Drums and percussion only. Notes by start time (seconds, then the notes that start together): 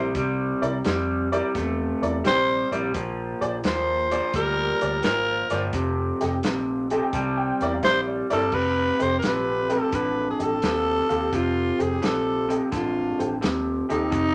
0.15 kick, closed hi-hat
0.63 closed hi-hat
0.84 snare, closed hi-hat
1.33 closed hi-hat
1.55 kick, snare, closed hi-hat
2.03 closed hi-hat
2.25 snare, closed hi-hat
2.72 closed hi-hat
2.94 kick, closed hi-hat
3.42 closed hi-hat
3.64 snare, closed hi-hat
4.11 closed hi-hat
4.33 kick, closed hi-hat
4.81 closed hi-hat
5.03 snare, closed hi-hat
5.50 snare, closed hi-hat
5.73 kick, closed hi-hat
6.21 snare, closed hi-hat
6.43 snare, closed hi-hat
6.90 closed hi-hat
7.13 kick, closed hi-hat
7.61 snare, closed hi-hat
7.83 kick, snare, closed hi-hat
8.30 snare, closed hi-hat
8.52 kick, crash
9.00 closed hi-hat
9.22 snare, closed hi-hat
9.70 closed hi-hat
9.92 kick, closed hi-hat
10.40 closed hi-hat
10.62 snare, closed hi-hat
11.10 closed hi-hat
11.33 kick, closed hi-hat
11.80 closed hi-hat
12.02 snare, closed hi-hat
12.50 closed hi-hat
12.72 kick, snare, closed hi-hat
13.20 closed hi-hat
13.42 snare, closed hi-hat
13.90 closed hi-hat
14.12 kick, closed hi-hat